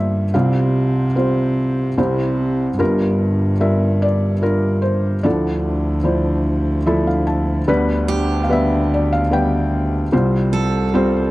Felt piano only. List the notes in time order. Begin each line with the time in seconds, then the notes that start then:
Already playing: G1 G2 G3 A#3 D4 F4 G4 A#4 C5 E5
0.34 C2 C3 G3 C4 F4 C5 F5
1.16 G3 C4 F4 C5
1.98 C2 C3 G3 C4 E4 C5
2.79 G1 G2 G3 D4 F4 A#4
3.60 G3 D4 F4 A#4 E5
4.02 D5
4.42 G3 D4 F4 A#4
4.82 C5
5.23 D2 D3 F3 D4 E4 A4 D5
6.03 F3 D4 E4 C5
6.86 F3 D4 E4 A4 E5
7.07 F5
7.27 A5
7.68 D2 D3 G3 B3 D4 B4
8.44 F5
8.49 G3 B3 D4 B4 E5
8.94 D5
9.13 F5
9.31 G3 B3 D4 B4 G5
10.12 C2 C3 G3 C4 F4 C5
10.94 G3 C4 F4 C5